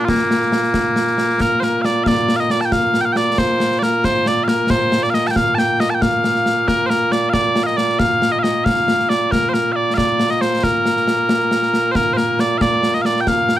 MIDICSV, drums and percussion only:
0, 0, Header, 1, 2, 480
1, 0, Start_track
1, 0, Key_signature, -2, "major"
1, 0, Tempo, 439560
1, 93, Time_signature, 6, 3, 24, 8
1, 14845, End_track
2, 0, Start_track
2, 0, Title_t, "Drums"
2, 92, Note_on_c, 9, 35, 59
2, 92, Note_on_c, 9, 38, 101
2, 202, Note_off_c, 9, 35, 0
2, 202, Note_off_c, 9, 38, 0
2, 336, Note_on_c, 9, 38, 79
2, 445, Note_off_c, 9, 38, 0
2, 454, Note_on_c, 9, 38, 29
2, 563, Note_off_c, 9, 38, 0
2, 571, Note_on_c, 9, 38, 82
2, 680, Note_off_c, 9, 38, 0
2, 693, Note_on_c, 9, 38, 28
2, 802, Note_off_c, 9, 38, 0
2, 808, Note_on_c, 9, 35, 54
2, 808, Note_on_c, 9, 38, 101
2, 917, Note_off_c, 9, 35, 0
2, 917, Note_off_c, 9, 38, 0
2, 1049, Note_on_c, 9, 38, 78
2, 1158, Note_off_c, 9, 38, 0
2, 1171, Note_on_c, 9, 38, 28
2, 1280, Note_off_c, 9, 38, 0
2, 1289, Note_on_c, 9, 38, 70
2, 1398, Note_off_c, 9, 38, 0
2, 1413, Note_on_c, 9, 38, 25
2, 1522, Note_off_c, 9, 38, 0
2, 1530, Note_on_c, 9, 35, 50
2, 1530, Note_on_c, 9, 38, 81
2, 1640, Note_off_c, 9, 35, 0
2, 1640, Note_off_c, 9, 38, 0
2, 1773, Note_on_c, 9, 38, 60
2, 1882, Note_off_c, 9, 38, 0
2, 2015, Note_on_c, 9, 38, 78
2, 2124, Note_off_c, 9, 38, 0
2, 2252, Note_on_c, 9, 35, 60
2, 2252, Note_on_c, 9, 38, 107
2, 2361, Note_off_c, 9, 35, 0
2, 2361, Note_off_c, 9, 38, 0
2, 2496, Note_on_c, 9, 38, 87
2, 2605, Note_off_c, 9, 38, 0
2, 2613, Note_on_c, 9, 38, 29
2, 2723, Note_off_c, 9, 38, 0
2, 2732, Note_on_c, 9, 38, 74
2, 2841, Note_off_c, 9, 38, 0
2, 2854, Note_on_c, 9, 38, 29
2, 2963, Note_off_c, 9, 38, 0
2, 2971, Note_on_c, 9, 35, 63
2, 2971, Note_on_c, 9, 38, 102
2, 3080, Note_off_c, 9, 35, 0
2, 3080, Note_off_c, 9, 38, 0
2, 3209, Note_on_c, 9, 38, 70
2, 3318, Note_off_c, 9, 38, 0
2, 3449, Note_on_c, 9, 38, 84
2, 3559, Note_off_c, 9, 38, 0
2, 3692, Note_on_c, 9, 35, 57
2, 3692, Note_on_c, 9, 38, 116
2, 3801, Note_off_c, 9, 35, 0
2, 3801, Note_off_c, 9, 38, 0
2, 3933, Note_on_c, 9, 38, 76
2, 4042, Note_off_c, 9, 38, 0
2, 4055, Note_on_c, 9, 38, 29
2, 4164, Note_off_c, 9, 38, 0
2, 4176, Note_on_c, 9, 38, 82
2, 4285, Note_off_c, 9, 38, 0
2, 4415, Note_on_c, 9, 35, 58
2, 4415, Note_on_c, 9, 38, 91
2, 4524, Note_off_c, 9, 35, 0
2, 4524, Note_off_c, 9, 38, 0
2, 4654, Note_on_c, 9, 38, 77
2, 4763, Note_off_c, 9, 38, 0
2, 4890, Note_on_c, 9, 38, 86
2, 5000, Note_off_c, 9, 38, 0
2, 5131, Note_on_c, 9, 35, 64
2, 5131, Note_on_c, 9, 38, 112
2, 5240, Note_off_c, 9, 35, 0
2, 5240, Note_off_c, 9, 38, 0
2, 5374, Note_on_c, 9, 38, 91
2, 5483, Note_off_c, 9, 38, 0
2, 5498, Note_on_c, 9, 38, 28
2, 5607, Note_off_c, 9, 38, 0
2, 5612, Note_on_c, 9, 38, 67
2, 5721, Note_off_c, 9, 38, 0
2, 5736, Note_on_c, 9, 38, 27
2, 5845, Note_off_c, 9, 38, 0
2, 5854, Note_on_c, 9, 35, 67
2, 5854, Note_on_c, 9, 38, 104
2, 5963, Note_off_c, 9, 35, 0
2, 5963, Note_off_c, 9, 38, 0
2, 6096, Note_on_c, 9, 38, 73
2, 6205, Note_off_c, 9, 38, 0
2, 6336, Note_on_c, 9, 38, 83
2, 6445, Note_off_c, 9, 38, 0
2, 6574, Note_on_c, 9, 35, 60
2, 6574, Note_on_c, 9, 38, 109
2, 6683, Note_off_c, 9, 35, 0
2, 6683, Note_off_c, 9, 38, 0
2, 6816, Note_on_c, 9, 38, 77
2, 6925, Note_off_c, 9, 38, 0
2, 6936, Note_on_c, 9, 38, 29
2, 7045, Note_off_c, 9, 38, 0
2, 7054, Note_on_c, 9, 38, 69
2, 7164, Note_off_c, 9, 38, 0
2, 7296, Note_on_c, 9, 35, 57
2, 7296, Note_on_c, 9, 38, 81
2, 7405, Note_off_c, 9, 35, 0
2, 7405, Note_off_c, 9, 38, 0
2, 7537, Note_on_c, 9, 38, 70
2, 7646, Note_off_c, 9, 38, 0
2, 7773, Note_on_c, 9, 38, 72
2, 7883, Note_off_c, 9, 38, 0
2, 8011, Note_on_c, 9, 35, 55
2, 8011, Note_on_c, 9, 38, 109
2, 8120, Note_off_c, 9, 35, 0
2, 8120, Note_off_c, 9, 38, 0
2, 8252, Note_on_c, 9, 38, 90
2, 8361, Note_off_c, 9, 38, 0
2, 8376, Note_on_c, 9, 38, 33
2, 8485, Note_off_c, 9, 38, 0
2, 8494, Note_on_c, 9, 38, 77
2, 8603, Note_off_c, 9, 38, 0
2, 8610, Note_on_c, 9, 38, 30
2, 8719, Note_off_c, 9, 38, 0
2, 8731, Note_on_c, 9, 35, 62
2, 8731, Note_on_c, 9, 38, 109
2, 8840, Note_off_c, 9, 35, 0
2, 8840, Note_off_c, 9, 38, 0
2, 8977, Note_on_c, 9, 38, 74
2, 9086, Note_off_c, 9, 38, 0
2, 9217, Note_on_c, 9, 38, 90
2, 9326, Note_off_c, 9, 38, 0
2, 9457, Note_on_c, 9, 35, 65
2, 9457, Note_on_c, 9, 38, 113
2, 9566, Note_off_c, 9, 35, 0
2, 9566, Note_off_c, 9, 38, 0
2, 9698, Note_on_c, 9, 38, 93
2, 9808, Note_off_c, 9, 38, 0
2, 9819, Note_on_c, 9, 38, 31
2, 9928, Note_off_c, 9, 38, 0
2, 9939, Note_on_c, 9, 38, 79
2, 10048, Note_off_c, 9, 38, 0
2, 10180, Note_on_c, 9, 35, 55
2, 10180, Note_on_c, 9, 38, 95
2, 10289, Note_off_c, 9, 35, 0
2, 10289, Note_off_c, 9, 38, 0
2, 10417, Note_on_c, 9, 38, 72
2, 10526, Note_off_c, 9, 38, 0
2, 10898, Note_on_c, 9, 35, 61
2, 10898, Note_on_c, 9, 38, 100
2, 11007, Note_off_c, 9, 35, 0
2, 11007, Note_off_c, 9, 38, 0
2, 11134, Note_on_c, 9, 38, 89
2, 11243, Note_off_c, 9, 38, 0
2, 11255, Note_on_c, 9, 38, 30
2, 11364, Note_off_c, 9, 38, 0
2, 11373, Note_on_c, 9, 38, 76
2, 11482, Note_off_c, 9, 38, 0
2, 11497, Note_on_c, 9, 38, 27
2, 11606, Note_off_c, 9, 38, 0
2, 11613, Note_on_c, 9, 35, 54
2, 11613, Note_on_c, 9, 38, 91
2, 11722, Note_off_c, 9, 35, 0
2, 11722, Note_off_c, 9, 38, 0
2, 11854, Note_on_c, 9, 38, 68
2, 11963, Note_off_c, 9, 38, 0
2, 11975, Note_on_c, 9, 38, 29
2, 12084, Note_off_c, 9, 38, 0
2, 12094, Note_on_c, 9, 38, 81
2, 12204, Note_off_c, 9, 38, 0
2, 12332, Note_on_c, 9, 38, 106
2, 12441, Note_off_c, 9, 38, 0
2, 12572, Note_on_c, 9, 38, 77
2, 12682, Note_off_c, 9, 38, 0
2, 12693, Note_on_c, 9, 38, 33
2, 12802, Note_off_c, 9, 38, 0
2, 12815, Note_on_c, 9, 38, 65
2, 12925, Note_off_c, 9, 38, 0
2, 13051, Note_on_c, 9, 35, 61
2, 13051, Note_on_c, 9, 38, 96
2, 13160, Note_off_c, 9, 35, 0
2, 13160, Note_off_c, 9, 38, 0
2, 13292, Note_on_c, 9, 38, 69
2, 13401, Note_off_c, 9, 38, 0
2, 13533, Note_on_c, 9, 38, 82
2, 13642, Note_off_c, 9, 38, 0
2, 13772, Note_on_c, 9, 35, 61
2, 13772, Note_on_c, 9, 38, 103
2, 13881, Note_off_c, 9, 35, 0
2, 13881, Note_off_c, 9, 38, 0
2, 14012, Note_on_c, 9, 38, 80
2, 14121, Note_off_c, 9, 38, 0
2, 14132, Note_on_c, 9, 38, 28
2, 14241, Note_off_c, 9, 38, 0
2, 14251, Note_on_c, 9, 38, 80
2, 14360, Note_off_c, 9, 38, 0
2, 14371, Note_on_c, 9, 38, 29
2, 14480, Note_off_c, 9, 38, 0
2, 14491, Note_on_c, 9, 35, 64
2, 14491, Note_on_c, 9, 38, 106
2, 14600, Note_off_c, 9, 35, 0
2, 14600, Note_off_c, 9, 38, 0
2, 14729, Note_on_c, 9, 38, 74
2, 14838, Note_off_c, 9, 38, 0
2, 14845, End_track
0, 0, End_of_file